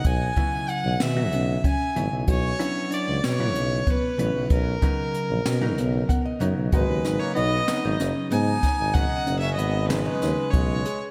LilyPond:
<<
  \new Staff \with { instrumentName = "Violin" } { \time 7/8 \key gis \minor \tempo 4 = 94 gis''4 fis''8 e''4 gis''8. r16 | cis''4 d''8 cis''4 b'4 | ais'2~ ais'8 r4 | b'8. cis''16 dis''4 r8 gis''4 |
fis''8. e''16 dis''8 b'4 cis''8. r16 | }
  \new Staff \with { instrumentName = "Synth arpeggio sound" } { \time 7/8 \key gis \minor dis'8 r4 dis8 cis'8 cis'8 e'8 | fis'8 d'8 d'4 cis'8 b8 cis'8~ | cis'8 r4 cis'8 b8 b8 dis'8 | fis'8 dis'8 dis'8 dis'8 cis'8 b4 |
r8 cis'4 dis'8 dis'4 gis'8 | }
  \new Staff \with { instrumentName = "Flugelhorn" } { \time 7/8 \key gis \minor r2. r8 | r2. r8 | r2. r8 | gis8. ais16 b4 r8 dis'4 |
dis'8. cis'16 b8 gis4 gis8. r16 | }
  \new Staff \with { instrumentName = "Hollow-body jazz guitar" } { \time 7/8 \key gis \minor << { r2. r8 | r2. r8 | r2 r8 fis''16 dis''8. | r2. r8 |
r2. r8 | } \\ { r8 <cis fis b e'>4 r16 <cis fis b fis'>4 r16 <cis fis b e'>8 | r8 <fis b cis' e'>4 r16 <cis fis b e'>4 r16 <cis fis b e'>8 | r8 <cis fis b dis'>4 r16 <cis fis b dis'>4 r16 <cis fis b dis'>8 | <cis fis b dis'>4 r8 <cis fis b dis'>16 <cis fis b dis'>4~ <cis fis b dis'>16 r8 |
<cis fis b dis'>4 r8 <cis fis b dis'>16 <cis fis b dis'>4~ <cis fis b dis'>16 r8 | } >> }
  \new Staff \with { instrumentName = "Tuba" } { \clef bass \time 7/8 \key gis \minor b,,8 r8. b,,16 b,8 b,,8 r8 gis,,16 b,,16 | b,,8 r8. cis,16 b,8 b,,8 r8 a,,16 b,,16 | b,,8 r8. ais,,16 b,8 b,,8 r8 fis,16 b,,16 | gis,,16 dis,16 gis,,16 r16 b,,8 r16 gis,,16 fis,,16 r16 gis,8 r16 gis,,16~ |
gis,,16 r16 fis,,8 gis,,4 dis,16 r16 b,,8 r8 | }
  \new DrumStaff \with { instrumentName = "Drums" } \drummode { \time 7/8 <hh bd>8 <hh bd>8 hh8 <hh sn>8 hh8 <hh bd>8 hh8 | <hh bd>8 hh8 hh8 <hh sn>8 hh8 <hh bd>8 hh8 | <hh bd>8 <hh bd>8 hh8 <hh sn>8 hh8 <hh bd>8 hh8 | <hh bd>8 <hh sn>8 hh8 <hh sn>8 <hh sn>8 hh8 <hh bd sn>8 |
<hh bd>8 hh8 hh8 <hh sn>8 <hh sn>8 <hh bd>8 hh8 | }
>>